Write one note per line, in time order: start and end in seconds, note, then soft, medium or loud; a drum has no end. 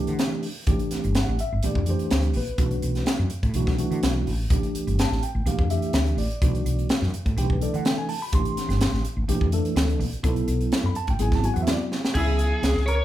0.00 0.46 E3 medium
0.00 0.46 A3 medium
0.00 0.46 D4 medium
0.00 0.46 G4 medium
0.07 0.27 D3 medium
0.07 closed hi-hat soft
0.19 snare loud
0.19 closed hi-hat medium
0.43 open hi-hat medium
0.67 0.77 A1 medium
0.67 1.35 E3 medium
0.67 1.35 A3 medium
0.67 1.35 D4 medium
0.67 1.35 G4 medium
0.67 kick loud
0.67 closed hi-hat medium
0.79 closed hi-hat soft
0.91 muted fretless electric bass stroke soft
0.91 snare soft
0.91 closed hi-hat medium
1.04 1.22 G1 medium
1.04 closed hi-hat soft
1.15 1.40 F#5 medium
1.15 snare loud
1.15 closed hi-hat medium
1.28 1.37 A1 medium
1.39 1.63 E5 medium
1.39 closed hi-hat medium
1.52 1.61 G1 medium
1.63 1.73 A#1 medium
1.63 1.83 E3 medium
1.63 1.83 A3 medium
1.63 1.83 D4 medium
1.63 1.83 G4 medium
1.63 1.88 D5 medium
1.63 closed hi-hat medium
1.75 1.94 F2 medium
1.75 kick medium
1.86 2.38 E3 medium
1.86 2.38 A3 medium
1.86 2.38 D4 medium
1.86 2.39 G4 medium
1.86 closed hi-hat medium
1.90 2.33 C5 medium
1.99 closed hi-hat soft
2.11 2.30 D2 medium
2.11 snare loud
2.11 closed hi-hat medium
2.23 closed hi-hat soft
2.34 2.45 A#1 medium
2.34 3.04 B4 medium
2.34 open hi-hat medium
2.47 closed hi-hat soft
2.58 2.77 B1 medium
2.58 3.27 E3 medium
2.58 3.27 A3 medium
2.58 3.27 D4 medium
2.58 3.27 F#4 medium
2.58 kick medium
2.58 closed hi-hat medium
2.71 closed hi-hat soft
2.82 3.01 B1 medium
2.82 closed hi-hat medium
2.95 snare soft
2.95 closed hi-hat soft
3.06 snare loud
3.06 closed hi-hat medium
3.19 3.28 F#2 medium
3.30 closed hi-hat medium
3.43 3.52 A2 medium
3.43 kick medium
3.43 closed hi-hat soft
3.54 3.82 B1 medium
3.54 3.75 E3 medium
3.54 3.75 A3 medium
3.54 3.75 D4 medium
3.54 3.75 F#4 medium
3.54 closed hi-hat medium
3.67 kick medium
3.67 snare soft
3.78 4.29 E3 medium
3.78 4.30 A3 medium
3.78 4.30 D4 medium
3.78 4.30 F#4 medium
3.78 closed hi-hat medium
3.91 4.00 D3 medium
3.91 closed hi-hat soft
4.03 4.24 B1 medium
4.03 snare loud
4.03 closed hi-hat medium
4.27 4.48 A1 medium
4.27 open hi-hat medium
4.50 4.60 A1 medium
4.50 5.18 E3 medium
4.50 5.18 A3 medium
4.50 5.19 D4 medium
4.50 5.19 G4 medium
4.50 kick loud
4.50 closed hi-hat medium
4.63 closed hi-hat soft
4.75 muted fretless electric bass stroke soft
4.75 closed hi-hat medium
4.87 5.05 G1 medium
4.87 closed hi-hat soft
4.99 5.23 A5 medium
4.99 snare loud
4.99 closed hi-hat medium
5.11 5.19 A1 medium
5.11 snare soft
5.23 5.46 G5 medium
5.23 closed hi-hat medium
5.35 5.43 A1 medium
5.46 5.55 A#1 loud
5.46 5.66 E3 medium
5.46 5.66 A3 medium
5.46 5.66 D4 medium
5.46 5.66 G4 medium
5.46 5.70 F5 medium
5.46 closed hi-hat medium
5.58 5.77 F2 medium
5.58 kick medium
5.70 6.21 E3 medium
5.70 6.21 A3 medium
5.70 6.21 D4 medium
5.70 6.21 G4 medium
5.70 6.15 E5 medium
5.70 closed hi-hat medium
5.82 closed hi-hat soft
5.93 6.12 D2 medium
5.93 snare loud
5.93 closed hi-hat medium
6.07 closed hi-hat soft
6.17 6.27 A1 medium
6.17 6.86 D5 medium
6.17 open hi-hat medium
6.31 closed hi-hat soft
6.42 6.60 B1 loud
6.42 7.09 E3 medium
6.42 7.09 A3 medium
6.42 7.09 D4 medium
6.42 7.10 F#4 medium
6.42 kick loud
6.42 closed hi-hat medium
6.55 closed hi-hat soft
6.65 6.84 B1 medium
6.65 closed hi-hat medium
6.79 closed hi-hat soft
6.89 snare loud
6.89 closed hi-hat medium
7.02 7.11 F#2 medium
7.02 snare soft
7.14 closed hi-hat medium
7.26 7.34 A2 medium
7.26 kick medium
7.26 closed hi-hat soft
7.37 7.65 B1 medium
7.37 7.57 E3 medium
7.37 7.57 A3 medium
7.37 7.57 D4 medium
7.37 7.58 G4 medium
7.37 7.50 G5 medium
7.37 closed hi-hat medium
7.50 7.62 B4 medium
7.50 kick medium
7.61 8.11 E3 medium
7.61 8.12 A3 medium
7.61 8.12 D4 medium
7.61 8.12 A4 medium
7.61 7.74 D5 medium
7.61 closed hi-hat medium
7.74 7.92 D3 medium
7.74 7.86 F#5 medium
7.74 closed hi-hat soft
7.85 7.98 G5 medium
7.85 snare loud
7.85 closed hi-hat medium
7.98 8.09 G#5 medium
8.09 8.21 A5 medium
8.09 open hi-hat medium
8.22 8.33 B5 medium
8.32 8.42 A1 medium
8.32 9.00 E3 medium
8.32 9.00 A3 medium
8.32 9.01 D4 medium
8.32 9.01 G4 medium
8.32 9.02 C6 medium
8.32 kick loud
8.32 closed hi-hat medium
8.45 closed hi-hat soft
8.56 muted fretless electric bass stroke soft
8.56 snare soft
8.56 closed hi-hat medium
8.69 8.87 G1 loud
8.69 snare soft
8.69 closed hi-hat soft
8.81 snare loud
8.81 closed hi-hat medium
8.92 9.01 A1 loud
8.92 snare soft
9.05 closed hi-hat medium
9.17 9.25 A1 medium
9.28 9.38 A#1 loud
9.28 9.48 E3 medium
9.28 9.48 A3 medium
9.28 9.48 D4 medium
9.28 9.48 G4 loud
9.28 closed hi-hat medium
9.41 9.59 F2 medium
9.41 kick medium
9.52 10.03 E3 medium
9.52 10.03 A3 medium
9.52 10.03 D4 medium
9.52 10.04 A4 loud
9.52 closed hi-hat medium
9.65 closed hi-hat soft
9.76 9.94 D2 medium
9.76 snare loud
9.76 closed hi-hat medium
9.89 closed hi-hat soft
9.99 10.09 A#1 medium
9.99 open hi-hat medium
10.13 closed hi-hat soft
10.23 10.42 B1 loud
10.23 10.92 F#3 medium
10.23 10.92 B3 medium
10.23 10.92 E4 medium
10.23 10.92 A4 medium
10.23 kick loud
10.23 closed hi-hat medium
10.36 closed hi-hat soft
10.47 10.66 B1 medium
10.47 closed hi-hat medium
10.61 closed hi-hat soft
10.72 snare loud
10.72 closed hi-hat medium
10.83 10.92 F#2 medium
10.83 10.96 B5 medium
10.95 11.09 A5 loud
10.95 closed hi-hat medium
11.07 11.16 A1 medium
11.07 11.20 G5 medium
11.07 kick medium
11.07 closed hi-hat soft
11.19 11.47 G#1 medium
11.19 11.39 F#3 medium
11.19 11.39 B3 medium
11.19 11.39 E4 medium
11.19 11.39 G#4 medium
11.19 11.34 G#5 medium
11.19 closed hi-hat medium
11.32 11.45 A5 medium
11.32 kick medium
11.32 snare soft
11.43 11.94 F#3 medium
11.43 11.94 B3 medium
11.43 11.94 E4 medium
11.43 11.94 F#4 medium
11.43 11.52 G#5 medium
11.43 closed hi-hat medium
11.54 11.74 E2 medium
11.54 11.61 F#5 medium
11.54 closed hi-hat soft
11.63 11.69 E5 medium
11.67 11.84 D5 loud
11.67 snare loud
11.67 closed hi-hat medium
11.92 snare medium
12.05 snare medium
12.14 12.51 C#2 medium
12.14 12.83 F#3 medium
12.14 12.83 B3 medium
12.14 12.83 E4 medium
12.14 12.84 E4 medium
12.14 12.83 G#4 medium
12.14 kick medium
12.14 crash medium
12.39 closed hi-hat medium
12.63 12.99 C#2 medium
12.63 snare loud
12.63 closed hi-hat medium
12.76 kick medium
12.76 snare soft
12.86 13.05 A#4 medium
12.86 13.05 C#5 medium
12.86 closed hi-hat medium